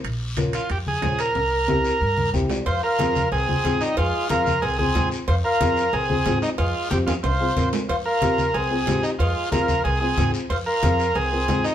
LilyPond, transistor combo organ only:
\new Staff \with { instrumentName = "Transistor combo organ" } { \time 4/4 \key c \phrygian \tempo 4 = 184 r4. f'8 g'8 aes'4 bes'8~ | bes'2. r4 | \key f \minor c''8 bes'4. aes'4. ees'8 | f'4 bes'4 aes'8 aes'4 r8 |
c''8 bes'4. aes'4. ees'8 | f'4 g'8 f'8 c''4. r8 | c''8 bes'4. aes'4. ees'8 | f'4 bes'4 aes'8 aes'4 r8 |
c''8 bes'4. aes'4. ees'8 | }